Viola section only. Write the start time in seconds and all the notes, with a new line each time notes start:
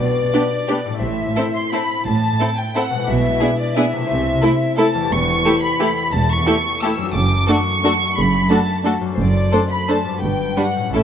0.34 B3 D4
0.70 B3 D4
1.38 C4
1.73 C4
2.41 C4
2.76 C4
3.41 B3 D4
3.77 B3 D4
4.43 A3 E4
4.78 A3 E4
5.45 A3 E4
5.80 A3 E4
6.47 A3 E4
6.83 A3 E4
7.49 A3 D4
7.84 A3 D4
8.50 A3 D4
8.84 A3 D4
9.53 A3 D4
9.89 A3 D4
10.57 G3 D4
10.95 A3 C#4